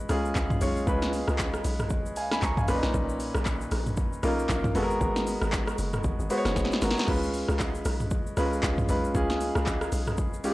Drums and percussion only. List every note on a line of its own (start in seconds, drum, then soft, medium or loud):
0.09 cross-stick medium
0.09 open hi-hat soft
0.09 shaker medium
0.25 shaker medium
0.35 kick loud
0.35 clap loud
0.35 shaker medium
0.50 kick medium
0.50 mid tom loud
0.50 shaker soft
0.61 open hi-hat medium
0.61 shaker loud
0.77 shaker soft
0.87 kick loud
0.87 shaker medium
1.02 snare medium
1.02 shaker medium
1.13 open hi-hat soft
1.13 shaker medium
1.28 cross-stick loud
1.28 shaker medium
1.39 kick medium
1.39 clap loud
1.39 shaker medium
1.54 cross-stick loud
1.54 shaker medium
1.64 open hi-hat medium
1.64 shaker medium
1.79 cross-stick medium
1.79 mid tom medium
1.79 shaker medium
1.90 kick loud
1.90 shaker medium
2.06 shaker medium
2.16 open hi-hat soft
2.16 shaker medium
2.31 cross-stick medium
2.31 snare medium
2.31 shaker medium
2.42 kick loud
2.42 clap loud
2.42 shaker medium
2.57 kick medium
2.57 mid tom medium
2.57 shaker soft
2.68 cross-stick loud
2.68 open hi-hat medium
2.68 shaker medium
2.83 snare medium
2.83 shaker soft
2.94 kick loud
2.94 shaker medium
3.09 shaker medium
3.20 open hi-hat soft
3.20 shaker medium
3.35 cross-stick loud
3.35 shaker medium
3.45 kick medium
3.45 clap medium
3.45 shaker medium
3.61 shaker medium
3.71 cross-stick medium
3.71 open hi-hat medium
3.71 shaker medium
3.86 mid tom medium
3.86 shaker medium
3.97 kick loud
3.97 shaker medium
4.13 shaker soft
4.23 cross-stick loud
4.23 open hi-hat soft
4.23 shaker medium
4.39 shaker medium
4.49 kick loud
4.49 clap loud
4.49 shaker medium
4.64 kick medium
4.64 mid tom loud
4.64 shaker soft
4.75 open hi-hat medium
4.75 shaker loud
4.91 shaker soft
5.01 kick loud
5.01 shaker medium
5.16 snare medium
5.16 shaker soft
5.27 open hi-hat soft
5.27 shaker medium
5.42 cross-stick loud
5.42 shaker medium
5.52 kick loud
5.52 clap loud
5.52 shaker medium
5.67 cross-stick loud
5.67 shaker medium
5.78 open hi-hat medium
5.78 shaker loud
5.93 cross-stick medium
5.93 mid tom medium
5.93 shaker medium
6.04 kick loud
6.04 shaker medium
6.20 shaker medium
6.30 open hi-hat soft
6.30 shaker medium
6.45 cross-stick medium
6.45 snare medium
6.45 shaker medium
6.56 kick loud
6.56 snare medium
6.56 shaker medium
6.65 snare medium
6.72 snare medium
6.72 shaker soft
6.82 snare medium
6.82 open hi-hat medium
6.82 shaker loud
6.91 snare loud
6.97 snare loud
6.97 shaker soft
7.08 kick loud
7.08 crash medium
7.23 shaker medium
7.34 open hi-hat medium
7.34 shaker medium
7.48 cross-stick loud
7.48 shaker medium
7.59 kick loud
7.59 clap medium
7.59 shaker medium
7.75 shaker medium
7.85 cross-stick loud
7.85 open hi-hat medium
7.85 shaker medium
8.00 mid tom medium
8.00 shaker medium
8.11 kick loud
8.11 shaker medium
8.27 shaker medium
8.37 cross-stick medium
8.37 open hi-hat soft
8.37 shaker medium
8.53 shaker medium
8.63 kick loud
8.63 clap loud
8.63 shaker medium
8.78 kick medium
8.78 mid tom loud
8.78 shaker soft
8.89 open hi-hat medium
8.89 shaker loud
9.04 shaker soft
9.15 kick loud
9.15 shaker medium
9.30 snare medium
9.30 shaker soft
9.41 open hi-hat soft
9.41 shaker medium
9.55 cross-stick loud
9.55 shaker medium
9.66 kick loud
9.66 clap medium
9.66 shaker medium
9.81 cross-stick loud
9.81 shaker medium
9.92 open hi-hat medium
9.92 shaker loud
10.07 cross-stick medium
10.07 mid tom medium
10.07 shaker soft
10.17 kick loud
10.17 shaker medium
10.34 shaker medium
10.44 open hi-hat soft
10.44 shaker medium